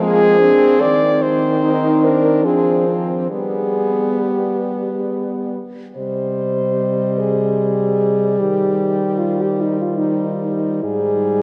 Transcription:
0.00 0.49 F3 loud
0.00 0.41 G#3 medium
0.00 0.41 C4 medium
0.00 0.82 G#4 loud
0.40 1.32 C4 medium
0.40 0.78 D4 loud
0.79 2.47 D#3 loud
0.79 2.46 C4 loud
0.79 1.24 D5 loud
1.22 2.06 C5 loud
1.63 2.06 D#4 medium
2.04 2.46 D4 medium
2.04 2.47 A#4 loud
2.44 3.30 F3 medium
2.44 3.30 C4 medium
2.44 2.88 D4 medium
2.44 3.01 G#4 loud
2.87 3.18 C4 medium
3.31 5.59 G3 medium
3.31 5.59 B3 medium
3.31 5.50 B3 medium
3.31 4.23 G#4 medium
4.22 5.10 G4 medium
5.96 8.35 C3 medium
5.96 10.79 G3 medium
5.96 7.20 C5 loud
5.96 8.35 D#5 medium
7.19 8.41 G#4 medium
8.39 10.79 D#3 medium
8.39 9.20 G4 medium
8.39 11.42 C5 medium
9.19 9.43 F4 medium
9.41 9.63 G4 medium
9.61 9.80 D#4 medium
9.81 10.01 F4 medium
9.99 10.85 D#4 medium
10.83 11.42 G#2 medium
10.83 11.42 G3 medium
10.83 11.42 G#4 loud

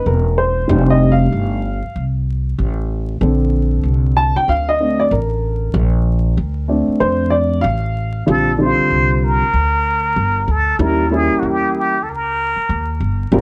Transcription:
0.00 0.65 A#3 medium
0.00 0.65 C#4 soft
0.00 0.65 D#4 medium
0.06 0.66 E1 medium
0.06 0.39 A#4 medium
0.38 0.92 C5 medium
0.68 1.29 F1 loud
0.68 1.59 G3 medium
0.68 1.59 A3 soft
0.68 1.60 D4 medium
0.68 1.60 D#4 medium
0.90 1.12 D#5 medium
1.12 2.02 F5 medium
1.32 1.80 G1 medium
1.83 muted upright bass stroke soft
1.96 2.56 C2 medium
2.58 3.18 A1 loud
3.21 3.81 A#1 loud
3.21 5.71 D3 medium
3.21 4.79 C4 medium
3.21 5.70 A4 medium
3.84 4.32 C2 medium
4.17 4.36 A5 loud
4.35 4.49 G5 loud
4.35 muted upright bass stroke soft
4.48 5.08 D2 medium
4.48 4.68 F5 loud
4.69 5.00 D#5 medium
4.80 5.08 A3 medium
4.80 5.08 C4 medium
4.80 5.09 D4 medium
5.00 5.12 D5 medium
5.11 5.71 A1 loud
5.11 6.66 A#4 medium
5.74 6.34 A#1 loud
6.37 6.85 D2 loud
6.68 7.59 A3 medium
6.68 7.60 C4 medium
6.68 7.60 D4 medium
6.88 muted upright bass stroke soft
7.00 7.61 F2 medium
7.00 7.33 C5 medium
7.30 7.64 D5 medium
7.61 8.24 A1 loud
7.61 8.22 F5 loud
8.26 8.75 A#1 loud
8.26 8.49 D3 medium
8.26 8.49 G3 medium
8.26 8.49 C4 medium
8.26 8.49 F4 medium
8.26 8.57 A4 medium
8.58 9.41 D3 medium
8.58 9.41 G3 medium
8.58 9.41 C4 medium
8.58 8.67 D#4 medium
8.58 9.25 C5 loud
8.66 9.44 F4 medium
8.79 muted upright bass stroke soft
8.91 9.38 C2 medium
9.24 10.53 A#4 loud
9.41 muted upright bass stroke soft
9.53 10.13 D2 medium
10.16 10.46 G1 medium
10.48 10.78 D2 medium
10.48 10.84 A4 medium
10.79 11.27 D#2 loud
10.79 11.02 G3 medium
10.79 11.02 A#3 medium
10.79 11.02 C#4 medium
10.79 11.02 E4 medium
10.79 11.15 A#4 loud
11.11 11.93 G3 medium
11.11 11.93 A#3 medium
11.11 11.94 C#4 medium
11.11 11.94 E4 medium
11.11 11.41 G#4 medium
11.31 muted upright bass stroke soft
11.39 12.06 E2 medium
11.39 11.47 F#4 medium
11.45 11.75 G4 medium
11.77 12.04 G4 medium
12.03 12.54 C#2 medium
12.03 12.11 A4 medium
12.09 13.02 A#4 medium
12.56 muted upright bass stroke soft
12.69 12.99 D#2 loud
13.00 13.30 G1 medium
13.32 13.41 G#1 loud
13.32 13.41 G3 medium
13.32 13.41 C4 medium
13.32 13.41 F4 medium
13.32 13.41 A#4 medium

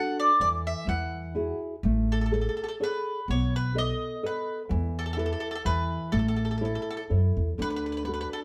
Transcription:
0.00 0.31 D4 soft
0.00 0.31 F#4 soft
0.00 0.31 A4 medium
0.00 0.16 F#5 medium
0.20 0.39 D5 medium
0.40 0.71 E2 medium
0.40 0.86 E3 medium
0.40 0.48 D5 medium
0.67 0.87 E5 medium
0.87 1.50 E2 medium
0.87 1.34 E3 medium
0.87 1.58 F#5 medium
1.35 1.74 E4 soft
1.35 1.75 F#4 soft
1.35 1.74 G#4 soft
1.83 2.46 A1 medium
1.83 2.31 A3 medium
2.12 2.17 A4 medium
2.21 2.25 A4 soft
2.26 2.31 A4 soft
2.31 2.70 G#4 soft
2.31 2.70 A4 soft
2.31 2.40 A4 soft
2.31 2.71 C#5 soft
2.41 2.48 A4 soft
2.49 2.55 A4 soft
2.57 2.62 A4 soft
2.64 2.67 A4 medium
2.69 2.75 A4 medium
2.80 3.18 G#4 soft
2.80 3.19 A4 soft
2.80 3.30 B4 medium
2.80 3.19 C#5 soft
3.28 3.90 B1 medium
3.28 3.75 B3 medium
3.28 3.53 C#5 medium
3.56 3.75 B4 medium
3.75 4.13 A4 soft
3.75 4.13 B4 soft
3.75 4.14 D#5 soft
3.75 4.21 D#5 medium
4.23 4.61 A4 soft
4.23 4.61 B4 soft
4.23 4.59 B4 medium
4.23 4.61 D#5 medium
4.69 5.32 E2 medium
4.69 5.16 E3 medium
4.99 5.04 A4 medium
5.06 5.11 A4 medium
5.13 5.55 E4 soft
5.13 5.18 A4 medium
5.18 5.55 A4 soft
5.18 5.25 A4 soft
5.18 5.56 B4 soft
5.26 5.31 A4 medium
5.33 5.39 A4 soft
5.40 5.47 A4 medium
5.51 5.54 A4 medium
5.55 5.61 A4 medium
5.65 5.96 E2 medium
5.65 6.11 E3 medium
5.65 6.12 B4 medium
6.12 6.76 A1 medium
6.12 6.59 A3 medium
6.12 6.18 A4 medium
6.19 6.27 A4 soft
6.28 6.35 A4 medium
6.36 6.43 A4 soft
6.45 6.50 A4 soft
6.51 6.56 A4 soft
6.58 7.00 E4 soft
6.58 6.64 A4 soft
6.58 7.00 A4 soft
6.62 6.72 A4 soft
6.62 7.00 C#5 soft
6.75 6.81 A4 soft
6.82 6.89 A4 soft
6.91 6.96 A4 medium
6.97 7.03 A4 soft
7.10 7.34 F#2 medium
7.10 7.48 E4 soft
7.10 7.49 A4 soft
7.10 7.49 C#5 medium
7.37 7.56 E2 medium
7.58 8.21 D2 medium
7.58 8.05 D3 medium
7.58 7.68 B4 medium
7.70 7.75 B4 soft
7.76 7.83 B4 medium
7.86 7.91 B4 soft
7.92 7.96 B4 soft
7.97 8.03 B4 soft
8.05 8.44 D4 soft
8.05 8.44 F#4 soft
8.05 8.44 A4 soft
8.05 8.11 B4 medium
8.14 8.20 B4 medium
8.21 8.27 B4 medium
8.33 8.39 A4 medium

